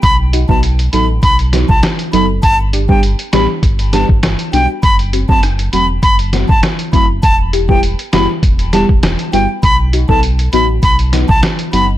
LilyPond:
<<
  \new Staff \with { instrumentName = "Flute" } { \time 4/4 \key b \phrygian \tempo 4 = 100 b''16 r8 a''16 r8 b''16 r16 b''16 r8 a''16 r8 b''16 r16 | a''16 r8 g''16 r8 b''16 r8. a''16 r8. g''16 r16 | b''16 r8 a''16 r8 b''16 r16 b''16 r8 a''16 r8 b''16 r16 | a''16 r8 g''16 r8 b''16 r8. a''16 r8. g''16 r16 |
b''16 r8 a''16 r8 b''16 r16 b''16 r8 a''16 r8 b''16 r16 | }
  \new Staff \with { instrumentName = "Synth stab" } { \time 4/4 \key b \phrygian r8 <dis' fis'>16 <fis b dis' fis'>16 r8 <fis b dis' a'>16 r8. <fis b dis' fis'>16 r8. <fis b dis' a'>16 r16 | r8 <d' g'>16 <g b d' g'>16 r8 <g b d' g'>16 r8. <g b d' g'>16 r8. <g b d' fis'>16 r16 | r8 <c' fis'>16 <fis a c' fis'>16 r8 <fis a c' fis'>16 r8. <fis a c' fis'>16 r8. <fis a c' e'>16 r16 | r8 <e' g'>16 <g b e' g'>16 r8 <g b e' fis'>16 r8. <g b e' g'>16 r8. <g b e' fis'>16 r16 |
r8 <dis' fis'>16 <fis b dis' a'>16 r8 <fis b dis' fis'>16 r8. <fis b dis' fis'>16 r8. <fis b dis' fis'>16 r16 | }
  \new Staff \with { instrumentName = "Sub bass" } { \clef bass \time 4/4 \key b \phrygian b,,8. b,,8. a,,8 b,,8. b,,16 r8 fis,,8 | g,,4~ g,,16 r16 a,,16 r16 g,,8. g,,8 r16 b,,16 r16 | fis,,8. fis,,8. e,,8 fis,,8. fis,,16 r8 fis,,8 | e,,4~ e,,16 r16 fis,,16 r16 e,,8. e,,8 r16 g,,16 r16 |
b,,8. b,,8. a,,8 b,,8. b,,16 r8 fis,,8 | }
  \new DrumStaff \with { instrumentName = "Drums" } \drummode { \time 4/4 <hh bd>8 hh16 bd16 hh16 hh16 hh8 <hh bd>16 hh16 <hh sn>16 bd16 <hh ss sn>16 hh16 hh8 | <hh bd>8 hh16 bd16 hh16 hh16 <hh sn>8 <hh bd>16 hh16 <hh sn>16 bd16 <hh ss sn>16 hh16 hh8 | <hh bd>16 hh16 hh16 bd16 <hh ss>16 hh16 hh8 <hh bd>16 hh16 <hh sn>16 bd16 <hh ss sn>16 hh16 <hh bd>8 | <hh bd>8 hh16 bd16 hh16 hh16 <hh sn>8 <hh bd>16 hh16 <hh sn>16 bd16 <hh ss sn>16 hh16 hh8 |
<hh bd>8 hh16 bd16 hh16 hh16 hh8 <hh bd>16 hh16 <hh sn>16 bd16 <hh ss sn>16 hh16 hh8 | }
>>